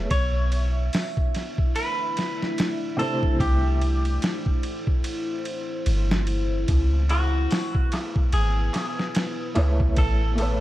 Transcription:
Already playing: ambient pad E5
0.11 808-style bass B1, ambient pad A3 D4 E4, clean electric guitar C#5, kick, ride
0.52 ride
0.93 snare, open hi-hat
1.17 kick
1.35 snare, ride
1.58 kick
1.76 clean electric guitar B4, ride
2.17 snare, ride
2.42 snare
2.58 snare, ride
2.97 felt piano C3 A3 E4 C5, clean electric guitar A4, ride
3.23 kick
3.40 808-style bass C2, clean electric guitar G4, ambient pad C5, kick, ride
3.81 ride
4.05 ride
4.22 snare, ride
4.46 kick
4.63 ride
4.87 kick
5.04 ride
5.45 ride
5.86 808-style bass G1, ride
6.11 snare
6.27 ride
6.67 808-style bass C#2, ambient pad B3 B4, kick, ride, darbuka tek
6.93 darbuka tek
7.09 clean electric guitar F#4, ride, darbuka tek
7.34 darbuka tek
7.51 snare, open hi-hat, darbuka tek
7.75 kick, darbuka tek
7.92 snare, ride, darbuka tek
8.16 kick, darbuka tek
8.32 808-style bass G#1, clean electric guitar G#4, ride, darbuka tek
8.57 darbuka tek
8.73 snare, ride, darbuka tek
8.98 snare, darbuka tek
9.15 snare, ride, darbuka tek
9.40 darbuka tek
9.55 808-style bass C#2, felt piano A3 E4 B4 C#5, ride, darbuka tek
9.80 kick, darbuka tek
9.97 808-style bass A1, clean electric guitar A4, kick, ride, darbuka tek
10.21 darbuka tek
10.35 felt piano A3 A4, ride, darbuka tek
10.40 felt piano B4 C#5

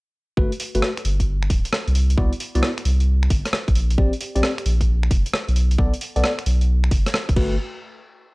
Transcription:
0.37 sub bass G1, tine electric piano A3 F#4 B4, kick
0.52 closed hi-hat
0.60 open hi-hat
0.75 sub bass G1, tine electric piano A3 F#4 B4, closed hi-hat
0.82 cross-stick
0.97 finger snap, closed hi-hat
1.05 sub bass G1, open hi-hat
1.20 kick, closed hi-hat
1.43 finger snap
1.50 sub bass D1, kick, open hi-hat
1.65 closed hi-hat
1.73 cross-stick
1.88 sub bass C2, closed hi-hat
1.95 open hi-hat
2.10 closed hi-hat
2.18 sub bass C2, tine electric piano B3 E4 F#4 D5, kick
2.33 closed hi-hat
2.40 open hi-hat
2.55 sub bass C2, tine electric piano B3 E4 F#4 D5, closed hi-hat
2.63 cross-stick
2.78 finger snap, closed hi-hat
2.85 sub bass C2, open hi-hat
3.00 closed hi-hat
3.23 finger snap
3.30 sub bass G1, kick, open hi-hat
3.45 cross-stick, closed hi-hat
3.53 cross-stick
3.68 sub bass A#1, kick, closed hi-hat
3.75 open hi-hat
3.90 closed hi-hat
3.98 sub bass A#1, tine electric piano C4 G4 D5, kick
4.13 closed hi-hat
4.21 open hi-hat
4.35 sub bass A#1, tine electric piano C4 G4 D5, closed hi-hat
4.43 cross-stick
4.58 finger snap, closed hi-hat
4.66 sub bass A#1, open hi-hat
4.81 kick, closed hi-hat
5.03 finger snap
5.11 sub bass F1, kick, open hi-hat
5.26 closed hi-hat
5.33 cross-stick
5.48 sub bass B1, closed hi-hat
5.56 open hi-hat
5.71 closed hi-hat
5.78 sub bass B1, tine electric piano B3 A4 D5, kick
5.94 closed hi-hat
6.01 open hi-hat
6.16 sub bass B1, tine electric piano B3 A4 D5, closed hi-hat
6.24 cross-stick
6.39 finger snap, closed hi-hat
6.46 sub bass B1, open hi-hat
6.61 closed hi-hat
6.84 finger snap
6.91 sub bass F#1, kick, open hi-hat
7.06 cross-stick, closed hi-hat
7.14 cross-stick
7.29 sub bass F#1, kick, closed hi-hat
7.36 sub bass G1, tine electric piano A3 F#4 B4, kick, crash

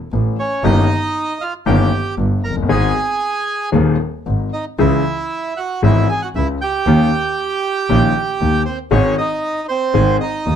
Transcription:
0.13 double bass A1, grand piano A1 A2
0.39 bandoneon C#4 C#5
0.64 double bass G1, grand piano G1 G2 D#3 A#3 C#4 G4, bandoneon D#4 D#5
1.41 bandoneon F4 F5
1.66 grand piano G1 G2 D#3 A#3 C#4 G4, double bass G1, bandoneon G4 G5
2.17 grand piano G1 G2, double bass G1
2.44 double bass F#1, bandoneon A#4 A#5
2.50 grand piano F1
2.57 grand piano F#1
2.63 grand piano G1
2.68 grand piano G#1 G#2 D#3 G#3 C4 G#4, double bass G#1, bandoneon G#4 G#5
3.72 grand piano D#1 D#2 D#3 G#3 C4 G#4, double bass D#2
4.26 grand piano G#1 G#2, double bass G#1
4.53 bandoneon D#4 D#5
4.79 grand piano C#2 C#3 E3 G#3 C#4 G#4, double bass C#2, bandoneon E4 E5
5.57 bandoneon F#4 F#5
5.82 grand piano G#1 G#2 E3 G#3 C#4 G#4, double bass G#1, bandoneon E4 E5
6.09 bandoneon G#4 G#5
6.22 bandoneon F#4 F#5
6.35 double bass C#2, grand piano C#2 C#3, bandoneon E4 E5
6.61 bandoneon G4 G5
6.86 double bass D#2, grand piano D#2 D#3 A#3 C#4 G4
7.89 grand piano A#1 A#2 D#3 A#3 C#4 G4, double bass A#1
8.41 grand piano D#2 D#3, double bass D#2
8.65 bandoneon C4 C5
8.91 grand piano G#1 G#2 D#3 G#3 C#4 G#4, double bass G#1, bandoneon C#4 C#5
9.18 bandoneon D#4 D#5
9.68 bandoneon C4 C5
9.94 grand piano G#1 G#2 D#3 G#3 C4 G#4, double bass G#1
10.20 bandoneon D#4 D#5
10.46 grand piano D#1 D#2, double bass D#2

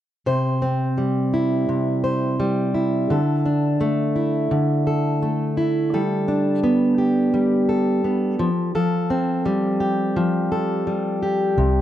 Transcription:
0.26 steel-string acoustic guitar C3 C5
0.62 steel-string acoustic guitar C4
0.98 steel-string acoustic guitar G3
1.34 steel-string acoustic guitar E4
1.69 steel-string acoustic guitar C3
2.04 steel-string acoustic guitar C5
2.40 steel-string acoustic guitar G3
2.74 steel-string acoustic guitar E4
3.10 steel-string acoustic guitar D3 A4
3.46 steel-string acoustic guitar D4
3.81 steel-string acoustic guitar A3
4.16 steel-string acoustic guitar E4
4.51 steel-string acoustic guitar D3
4.87 steel-string acoustic guitar A4
5.22 steel-string acoustic guitar A3
5.57 steel-string acoustic guitar E4
5.94 steel-string acoustic guitar G3 A4
6.28 steel-string acoustic guitar D4
6.64 steel-string acoustic guitar B3
6.98 steel-string acoustic guitar G4
7.34 steel-string acoustic guitar G3
7.69 steel-string acoustic guitar A4
8.04 steel-string acoustic guitar B3
8.39 steel-string acoustic guitar F3
8.75 steel-string acoustic guitar F3 A4
9.10 steel-string acoustic guitar C4
9.46 steel-string acoustic guitar G3
9.80 steel-string acoustic guitar G4
10.16 steel-string acoustic guitar F3
10.52 steel-string acoustic guitar A4
10.87 steel-string acoustic guitar G3
11.23 steel-string acoustic guitar G4
11.57 fingered electric bass C2, steel-string acoustic guitar C3

